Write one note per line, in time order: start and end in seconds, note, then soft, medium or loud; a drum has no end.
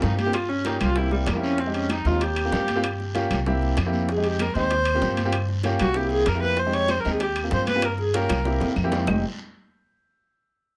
0.00 0.75 G2 medium
0.00 0.17 A#3 medium
0.00 0.17 C4 medium
0.00 0.18 D#4 medium
0.00 0.17 F4 medium
0.00 0.17 G4 medium
0.00 high bongo medium
0.00 low bongo medium
0.00 high conga soft
0.00 low timbale medium
0.00 short guiro medium
0.18 0.36 G4 loud
0.18 high conga medium
0.18 high timbale medium
0.18 short guiro medium
0.26 0.34 A#3 medium
0.26 0.34 C4 medium
0.26 0.34 F4 medium
0.26 0.34 G4 medium
0.33 0.51 F4 medium
0.33 high bongo medium
0.33 high conga soft
0.33 high timbale loud
0.33 long guiro medium
0.33 claves medium
0.49 0.68 C#4 medium
0.49 high bongo soft
0.49 high conga soft
0.65 0.87 A#3 medium
0.65 0.87 C#4 medium
0.65 0.81 D#4 medium
0.65 0.87 F4 medium
0.65 0.88 G4 medium
0.65 high bongo medium
0.65 high conga medium
0.65 high timbale medium
0.65 short guiro medium
0.80 1.24 C2 loud
0.80 0.98 F4 loud
0.80 high bongo soft
0.80 high conga soft
0.80 low conga loud
0.80 high timbale medium
0.80 short guiro medium
0.80 claves medium
0.96 1.24 A#3 medium
0.96 1.24 C4 medium
0.96 1.13 E4 medium
0.96 1.24 E4 medium
0.96 1.24 G4 medium
0.96 high bongo medium
0.96 high conga soft
0.96 long guiro medium
1.11 1.29 G3 medium
1.11 high bongo soft
1.27 2.00 F2 medium
1.27 1.43 A#3 medium
1.27 high bongo medium
1.27 low bongo medium
1.27 high conga soft
1.27 high timbale medium
1.27 low timbale medium
1.27 short guiro medium
1.27 claves medium
1.35 1.57 A#3 medium
1.35 1.57 C4 medium
1.35 1.57 E4 medium
1.35 1.58 G4 medium
1.43 1.61 C#4 medium
1.43 short guiro medium
1.58 1.75 C4 medium
1.58 high bongo medium
1.58 high conga soft
1.58 long guiro medium
1.66 1.94 G#3 medium
1.66 1.94 C4 medium
1.66 1.94 D#4 medium
1.66 1.94 G4 medium
1.74 1.93 C#4 medium
1.74 high conga soft
1.74 high timbale medium
1.89 2.08 D#4 medium
1.89 high bongo medium
1.89 high conga medium
1.89 high timbale medium
1.89 short guiro medium
1.89 claves medium
2.05 2.49 D#2 loud
2.05 2.21 G#3 medium
2.05 2.22 C4 medium
2.05 2.22 D#4 medium
2.05 2.24 F4 medium
2.05 2.22 F4 medium
2.05 high conga soft
2.05 short guiro medium
2.21 3.16 G4 loud
2.21 high bongo medium
2.21 high conga soft
2.21 high timbale medium
2.21 long guiro medium
2.36 high conga soft
2.36 high timbale medium
2.36 claves medium
2.45 2.67 A#3 medium
2.45 2.67 C4 medium
2.45 2.67 F4 medium
2.45 2.67 G4 medium
2.52 3.25 G2 medium
2.52 high bongo medium
2.52 low bongo medium
2.52 high conga soft
2.52 low timbale medium
2.52 short guiro medium
2.68 high conga medium
2.68 high timbale medium
2.68 short guiro medium
2.76 2.84 A#3 loud
2.76 2.84 C4 medium
2.76 2.84 F4 medium
2.76 2.84 G4 loud
2.84 high bongo medium
2.84 high timbale loud
2.84 long guiro medium
2.84 claves medium
3.00 high bongo soft
3.00 high conga soft
3.15 3.37 A#3 loud
3.15 3.37 C#4 medium
3.15 3.37 F4 loud
3.15 3.37 G4 loud
3.15 high bongo medium
3.15 high conga medium
3.15 high timbale medium
3.15 short guiro medium
3.30 3.74 C2 loud
3.30 high bongo soft
3.30 high conga soft
3.30 low conga medium
3.30 high timbale medium
3.30 short guiro medium
3.30 claves medium
3.46 3.74 A#3 medium
3.46 3.74 C4 medium
3.46 3.74 E4 medium
3.46 3.74 G4 loud
3.46 high bongo medium
3.46 high conga soft
3.46 low conga medium
3.46 long guiro medium
3.62 high bongo soft
3.62 high conga soft
3.77 4.50 F2 medium
3.77 high bongo medium
3.77 low bongo medium
3.77 high conga soft
3.77 high timbale medium
3.77 short guiro medium
3.77 claves medium
3.86 4.07 A#3 medium
3.86 4.07 C4 medium
3.86 4.08 E4 medium
3.86 4.08 G4 medium
3.93 high conga medium
3.93 short guiro medium
4.09 4.27 G#4 medium
4.09 high bongo medium
4.09 long guiro medium
4.17 4.44 G#3 medium
4.17 4.44 C4 medium
4.17 4.44 D#4 medium
4.17 4.44 G4 medium
4.24 4.43 G4 medium
4.24 high conga soft
4.24 high timbale medium
4.39 4.56 A#4 medium
4.39 high bongo medium
4.39 high conga medium
4.39 high timbale medium
4.39 short guiro medium
4.39 claves medium
4.55 4.99 D#2 loud
4.55 4.71 G#3 medium
4.55 4.71 C4 medium
4.55 4.71 D#4 medium
4.55 4.72 G4 medium
4.55 5.30 C5 loud
4.55 high conga soft
4.55 short guiro medium
4.70 high bongo medium
4.70 high conga soft
4.70 high timbale medium
4.70 long guiro medium
4.85 high conga soft
4.85 high timbale loud
4.85 claves medium
4.95 5.16 A#3 medium
4.95 5.16 C4 medium
4.95 5.17 F4 medium
4.95 5.17 G4 loud
5.01 5.74 G2 loud
5.01 high bongo medium
5.01 low bongo medium
5.01 high conga soft
5.01 short guiro medium
5.17 high conga medium
5.17 high timbale medium
5.17 short guiro medium
5.25 5.33 A#3 medium
5.25 5.33 C4 medium
5.25 5.33 F4 medium
5.25 5.33 G4 loud
5.33 high bongo medium
5.33 high timbale loud
5.33 long guiro medium
5.33 claves medium
5.48 high bongo soft
5.48 high conga soft
5.63 5.86 A#3 loud
5.63 5.86 C#4 medium
5.63 5.87 F4 medium
5.63 5.87 G4 loud
5.63 high bongo medium
5.63 high conga medium
5.63 high timbale medium
5.63 short guiro medium
5.79 6.24 C2 medium
5.79 5.98 F#4 loud
5.79 high bongo soft
5.79 high conga soft
5.79 low conga loud
5.79 high timbale loud
5.79 short guiro medium
5.79 claves medium
5.94 6.23 A#3 medium
5.94 6.23 C4 medium
5.94 6.23 E4 medium
5.94 6.11 G4 medium
5.94 6.23 G4 medium
5.94 high bongo medium
5.94 high conga soft
5.94 long guiro medium
6.10 6.29 G#4 loud
6.10 high bongo soft
6.10 high conga soft
6.26 6.99 F2 medium
6.26 6.42 A#4 medium
6.26 high bongo medium
6.26 low bongo medium
6.26 high conga soft
6.26 high timbale medium
6.26 short guiro medium
6.26 claves medium
6.34 6.56 A#3 medium
6.34 6.57 C4 medium
6.34 6.57 E4 medium
6.34 6.57 G4 medium
6.42 6.61 B4 loud
6.42 high conga medium
6.42 short guiro medium
6.57 6.76 C5 medium
6.57 high bongo medium
6.57 high conga soft
6.57 long guiro medium
6.66 6.93 G#3 medium
6.66 6.93 C4 medium
6.66 6.93 D#4 medium
6.66 6.93 G4 medium
6.73 6.92 C#5 loud
6.73 high conga soft
6.73 high timbale medium
6.88 7.02 C5 medium
6.88 high bongo medium
6.88 high conga medium
6.88 high timbale medium
6.88 short guiro medium
6.88 claves medium
7.00 7.13 A#4 medium
7.05 7.48 D#2 loud
7.05 7.20 G#3 medium
7.05 7.20 C4 medium
7.05 7.21 D#4 medium
7.05 7.21 G4 medium
7.05 high conga soft
7.05 short guiro medium
7.11 7.21 G#4 medium
7.20 7.31 G4 medium
7.20 high bongo medium
7.20 high conga soft
7.20 high timbale medium
7.20 long guiro medium
7.36 high conga soft
7.36 high timbale medium
7.36 claves medium
7.43 7.65 A#3 medium
7.43 7.66 C4 medium
7.43 7.66 F4 medium
7.43 7.66 G4 medium
7.51 8.24 G2 loud
7.51 7.67 C5 medium
7.51 high bongo medium
7.51 low bongo medium
7.51 high conga soft
7.51 short guiro medium
7.67 7.86 B4 loud
7.67 high conga medium
7.67 high timbale medium
7.67 short guiro medium
7.75 7.83 A#3 medium
7.75 7.83 C4 medium
7.75 7.83 F4 medium
7.75 7.83 G4 loud
7.82 7.99 A#4 medium
7.82 high bongo medium
7.82 high timbale loud
7.82 claves medium
7.98 8.17 G#4 medium
7.98 high bongo soft
7.98 high conga soft
8.14 8.36 A#3 medium
8.14 8.36 C#4 medium
8.14 8.36 F4 medium
8.14 8.36 G4 loud
8.14 8.62 A#4 medium
8.14 high bongo medium
8.14 high conga medium
8.14 high timbale medium
8.14 short guiro medium
8.29 8.59 C2 loud
8.29 high bongo loud
8.29 high conga soft
8.29 low conga medium
8.29 high timbale medium
8.29 short guiro medium
8.29 claves medium
8.44 8.72 A#3 medium
8.44 8.72 C4 medium
8.44 8.72 E4 medium
8.44 8.73 G4 medium
8.44 high bongo medium
8.44 high conga soft
8.44 long guiro medium
8.61 8.75 E2 medium
8.61 low bongo medium
8.61 high conga soft
8.61 high timbale medium
8.76 9.04 F2 loud
8.76 high conga soft
8.76 short guiro medium
8.76 claves medium
8.84 9.06 A#3 medium
8.84 9.06 C4 medium
8.84 9.06 E4 medium
8.84 9.06 G4 loud
8.92 low bongo medium
8.92 high conga medium
8.92 low timbale loud
8.92 short guiro medium
9.07 9.22 F1 medium
9.07 9.22 G#3 medium
9.07 9.22 C4 medium
9.07 9.22 D#4 medium
9.07 9.22 G4 medium
9.07 low bongo loud
9.07 low conga medium
9.07 low timbale loud
9.07 long guiro loud
9.07 claves loud